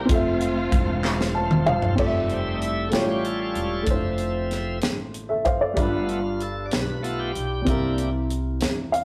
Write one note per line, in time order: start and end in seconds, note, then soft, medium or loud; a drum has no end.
0.00 0.11 C3 medium
0.00 0.05 C4 medium
0.00 0.11 G4 medium
0.00 0.12 A#4 medium
0.00 0.11 E5 medium
0.05 0.68 F1 medium
0.05 1.93 C4 medium
0.05 1.94 F4 medium
0.05 1.31 F4 medium
0.05 kick loud
0.05 closed hi-hat medium
0.10 1.95 F3 medium
0.10 1.95 A3 medium
0.10 1.32 A3 medium
0.10 1.95 C4 medium
0.10 1.32 C4 medium
0.10 1.95 F4 medium
0.10 1.95 A4 medium
0.14 1.97 E5 medium
0.41 closed hi-hat soft
0.72 1.95 E1 medium
0.72 kick medium
0.72 closed hi-hat medium
1.04 snare medium
1.04 clap medium
1.21 snare medium
1.35 1.64 A5 medium
1.51 mid tom medium
1.66 1.96 F5 medium
1.66 mid tom medium
1.82 floor tom medium
1.95 2.89 F1 medium
1.95 2.89 G3 soft
1.95 2.89 A3 soft
1.95 2.92 C4 medium
1.95 2.90 F4 medium
1.95 2.93 A4 medium
1.95 2.05 D5 medium
1.95 2.89 E5 soft
1.95 kick medium
1.95 crash medium
2.06 2.97 E5 medium
2.30 2.56 C4 medium
2.30 closed hi-hat soft
2.54 2.61 D#4 medium
2.62 2.88 E4 medium
2.62 closed hi-hat soft
2.87 3.81 A3 medium
2.87 2.93 A4 medium
2.91 3.52 A1 medium
2.91 3.83 A2 medium
2.91 3.84 G3 soft
2.91 3.85 C#4 soft
2.91 3.87 F4 soft
2.91 3.85 F4 soft
2.91 3.88 G4 soft
2.91 3.88 C#5 medium
2.91 snare medium
2.91 closed hi-hat medium
2.96 3.27 G4 medium
3.25 3.40 A4 medium
3.25 closed hi-hat soft
3.42 4.32 A4 medium
3.55 3.85 E1 medium
3.55 closed hi-hat soft
3.83 5.71 A3 medium
3.83 5.72 D4 soft
3.83 closed hi-hat medium
3.87 4.78 F1 medium
3.87 4.79 F3 soft
3.87 4.79 C4 soft
3.87 3.94 E4 soft
3.87 4.82 C5 medium
3.87 4.79 E5 medium
3.87 kick medium
3.94 5.77 F4 soft
4.18 closed hi-hat soft
4.51 snare soft
4.51 closed hi-hat soft
4.82 5.42 A1 medium
4.82 snare medium
4.82 closed hi-hat medium
5.14 closed hi-hat soft
5.29 5.45 A4 soft
5.29 5.44 E5 medium
5.45 5.75 F#1 medium
5.45 5.61 C5 medium
5.45 5.60 F5 medium
5.45 kick medium
5.45 closed hi-hat soft
5.61 5.92 A4 soft
5.61 5.91 D5 medium
5.74 6.68 G1 medium
5.74 6.68 G2 medium
5.74 7.60 G3 medium
5.74 7.63 D4 medium
5.74 kick medium
5.74 closed hi-hat medium
5.78 6.20 A3 soft
5.78 6.20 B3 soft
5.78 7.64 F4 medium
5.78 6.10 F4 medium
5.78 7.65 B4 medium
6.09 6.43 F4 medium
6.09 closed hi-hat soft
6.40 6.67 A4 medium
6.40 closed hi-hat soft
6.66 6.72 D5 medium
6.71 7.32 B1 medium
6.71 7.01 B4 medium
6.71 snare medium
6.71 closed hi-hat medium
7.03 7.32 A3 soft
7.03 7.32 B3 soft
7.03 7.32 F4 soft
7.03 7.20 A4 medium
7.03 closed hi-hat soft
7.19 8.10 G4 medium
7.35 7.65 B1 medium
7.35 closed hi-hat soft
7.62 8.57 C3 medium
7.62 9.04 G3 medium
7.62 9.04 C4 soft
7.67 8.58 C2 medium
7.67 8.09 A#3 soft
7.67 8.10 D4 soft
7.67 9.04 E4 medium
7.67 8.10 E4 medium
7.67 9.04 A#4 medium
7.67 kick medium
7.67 closed hi-hat medium
7.98 closed hi-hat soft
8.30 closed hi-hat soft
8.61 9.04 E2 medium
8.61 snare medium
8.61 closed hi-hat medium
8.92 9.04 F5 medium
8.92 closed hi-hat soft